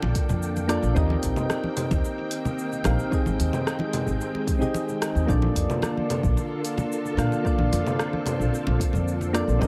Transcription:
Already playing: string machine D3 A#3 A4 G5, synth keys A#3 D4 F4 A4 D5 F5
0.02 upright bass A#1, muted conga
0.15 kick, closed hi-hat, cabasa
0.29 upright bass F2, low conga, cabasa
0.43 cabasa
0.56 muted conga, cabasa
0.68 synth keys A#3 D4 F4 A4 D5, cross-stick, closed hi-hat, cabasa
0.83 upright bass A#1, cabasa
0.95 upright bass D#2, string machine D#3 A#3 C4, synth keys C4 D#4 G4 A#4 D#5, kick, muted conga, cabasa
1.10 high conga
1.23 upright bass A#1, kick, closed hi-hat, cabasa
1.36 low conga, cabasa
1.50 cross-stick, muted conga, cabasa
1.64 high conga
1.77 closed hi-hat, low conga, cabasa
1.91 upright bass D#2, kick, muted conga, cabasa
2.05 cabasa
2.31 closed hi-hat, cabasa
2.45 muted conga, low conga, cabasa
2.59 cabasa
2.72 cabasa
2.84 upright bass A#1, synth keys C4 D#4 G4 A#4 F5, cross-stick, closed hi-hat, muted conga, cabasa
2.99 cabasa
3.10 string machine G#3, synth keys C4 D#4 G4 G#4 D#5, kick, cabasa
3.26 upright bass G#1, high conga, cabasa
3.39 upright bass D#2, closed hi-hat, muted conga, cabasa
3.53 low conga, cabasa
3.67 cross-stick, cabasa
3.79 muted conga, high conga
3.93 closed hi-hat, low conga, cabasa
4.06 upright bass G#1, cabasa
4.21 cabasa
4.35 muted conga
4.47 kick, closed hi-hat, high conga, cabasa
4.59 synth keys C4 D#4 G4 G#4 D#5, low conga, cabasa
4.74 muted conga, cabasa
4.89 cabasa
5.02 cross-stick, closed hi-hat, cabasa
5.15 upright bass D#2, cabasa
5.26 upright bass A#1, string machine D3 A#3 F4 A4, synth keys A#3 D4 F4 A4 D5, kick, cabasa
5.42 muted conga, high conga
5.55 upright bass F2, kick, closed hi-hat, cabasa
5.70 low conga, cabasa
5.82 cross-stick, muted conga, cabasa
5.97 high conga
6.10 closed hi-hat, low conga, cabasa
6.23 upright bass A#1, kick, cabasa
6.37 muted conga, cabasa
6.65 closed hi-hat, cabasa
6.78 muted conga, low conga, cabasa
6.92 cabasa
7.06 cabasa
7.17 upright bass A#2, synth keys A#3 D4 F4 A4 F5, cross-stick, closed hi-hat, cabasa
7.32 muted conga, cabasa
7.43 synth keys A#3 D4 F4 A4 D5, string machine C4, kick, cabasa
7.58 upright bass A#1, high conga
7.72 upright bass F2, closed hi-hat, muted conga, cabasa
7.87 low conga, cabasa
7.99 cross-stick, cabasa
8.13 high conga
8.26 closed hi-hat, muted conga, low conga, cabasa
8.40 upright bass A#1, cabasa
8.54 cabasa
8.67 upright bass A#1, muted conga
8.80 kick, closed hi-hat, cabasa
8.93 upright bass F2, low conga, cabasa
9.08 cabasa
9.21 muted conga, cabasa
9.33 synth keys A#3 D4 F4 A4 D5, cross-stick, closed hi-hat, cabasa
9.47 upright bass A#1, cabasa
9.59 upright bass D#2, string machine D#3 A#3 C4 G5, synth keys C4 D#4 G4 A#4 D#5, kick, muted conga, cabasa

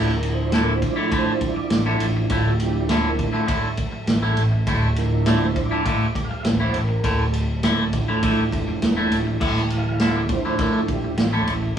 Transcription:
Already playing: fingered electric bass D1, synth drone D2 A2, clean electric guitar A2 D3 A3 E4, tonewheel organ F3 D4 E4
0.08 snare
0.13 tonewheel organ A#4
0.23 tonewheel organ F3 D4 E4, ride
0.35 tonewheel organ C5
0.52 clean electric guitar A2 D3 A3 E4, tonewheel organ A#4, snare, ride
0.75 tonewheel organ C5
0.82 kick, ride
0.93 clean electric guitar D3 A3 E4, tonewheel organ D5
0.97 clean electric guitar A2
1.12 clean electric guitar A2 D3 A3 E4, tonewheel organ C5, kick, ride
1.41 kick, ride
1.54 tonewheel organ D5, muted clean electric guitar stroke
1.70 fingered electric bass A1, snare, ride
1.86 clean electric guitar A2 D3 A3 E4
1.93 tonewheel organ D4
2.00 fingered electric bass A1, ride
2.17 muted clean electric guitar stroke
2.30 fingered electric bass D1, clean electric guitar A2 D3 A3 E4, tonewheel organ F4, kick, ride
2.60 tonewheel organ F3 D4 E4 G4, ride
2.88 clean electric guitar A2 D3 A3 E4, tonewheel organ A4, snare, ride
3.09 tonewheel organ A#4
3.19 kick, ride
3.29 clean electric guitar E4, tonewheel organ A4
3.33 clean electric guitar A2 D3 A3
3.47 clean electric guitar A2 D3 A3 E4, kick, ride
3.77 kick, ride
3.92 muted clean electric guitar stroke
4.07 fingered electric bass A1, snare, ride
4.22 clean electric guitar A2 D3 A3 E4
4.37 fingered electric bass A1, ride
4.52 muted clean electric guitar stroke
4.67 fingered electric bass D1, clean electric guitar A2 D3 A3 E4, kick, ride
4.96 tonewheel organ F3 D4 E4 A#4, ride
5.25 clean electric guitar A2 D3 A3 E4, tonewheel organ D5, snare, ride
5.45 tonewheel organ C5
5.56 kick, ride
5.66 tonewheel organ D5
5.71 clean electric guitar A2 D3 A3 E4
5.85 clean electric guitar A2 D3 A3 E4, tonewheel organ F5, kick, ride
6.04 tonewheel organ D5
6.15 kick, ride
6.25 tonewheel organ F5
6.31 muted clean electric guitar stroke
6.41 fingered electric bass A1, tonewheel organ E5, snare, ride
6.60 clean electric guitar A2 D3 A3 E4, tonewheel organ C5
6.74 fingered electric bass A1, ride
6.83 tonewheel organ A#4
6.89 muted clean electric guitar stroke
7.04 fingered electric bass D1, clean electric guitar A2 D3 A3 E4, kick, ride
7.24 tonewheel organ A4
7.33 ride
7.63 clean electric guitar A2 D3 A3 E4, snare, ride
7.93 tonewheel organ E3 F3 D4, kick, ride
8.08 clean electric guitar A2 D3 A3 E4
8.23 clean electric guitar A2 D3 A3 E4, kick, ride
8.52 fingered electric bass F1, kick, ride
8.68 muted clean electric guitar stroke
8.82 fingered electric bass E1, snare, ride
8.97 clean electric guitar A2 D3 A3 E4
9.09 fingered electric bass D1, tonewheel organ F3 D4 E4, ride
9.27 muted clean electric guitar stroke
9.40 fingered electric bass D1, synth drone D2 A2, clean electric guitar A2 D3 A3 E4, kick, crash
9.56 snare
9.70 tonewheel organ F5, ride
10.00 clean electric guitar A2 D3 A3 E4, snare, ride
10.16 tonewheel organ D5
10.29 tonewheel organ F3 D4 E4 C5, kick, ride
10.45 clean electric guitar A2 D3 A3 E4
10.59 clean electric guitar A2 D3 A3 E4, tonewheel organ A#4, kick, ride
10.73 tonewheel organ A4
10.87 tonewheel organ G4, kick, ride
11.04 muted clean electric guitar stroke
11.17 fingered electric bass A1, tonewheel organ F4, snare, ride
11.32 clean electric guitar A2 D3 A3 E4, tonewheel organ E4
11.47 fingered electric bass A1, ride
11.63 muted clean electric guitar stroke
11.75 tonewheel organ F3 D4

